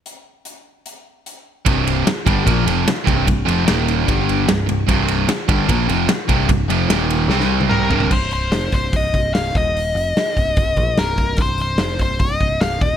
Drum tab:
CC |----------------|----------------|----------------|----------------|
RD |----------------|x-x-x-x-x-x-x-x-|x-x-x-x-x-x-x-x-|x-x-x-x-x-x-x-x-|
HH |x---x---x---x---|----------------|----------------|----------------|
SD |----------------|----o-------o---|----o-------o---|----o-------o---|
T1 |----------------|----------------|----------------|----------------|
T2 |----------------|----------------|----------------|----------------|
FT |----------------|----------------|----------------|----------------|
BD |----------------|o-----o-o-----o-|o-------o-------|o-----o-o-----o-|

CC |----------------|x---------------|----------------|----------------|
RD |x-x-x-x---------|----------------|----------------|----------------|
HH |----------------|--o-o-o-o-o-o-o-|o-o-o-o-o-o-o-o-|o-o-o-o-o-o-o-o-|
SD |----o---oo------|----o-------o---|----o-------o---|----o-------o---|
T1 |-----------o----|----------------|----------------|----------------|
T2 |------------o---|----------------|----------------|----------------|
FT |--------------oo|----------------|----------------|----------------|
BD |o---------------|o-----o-o-o---o-|------o-o-o---o-|o-----o-o-o---o-|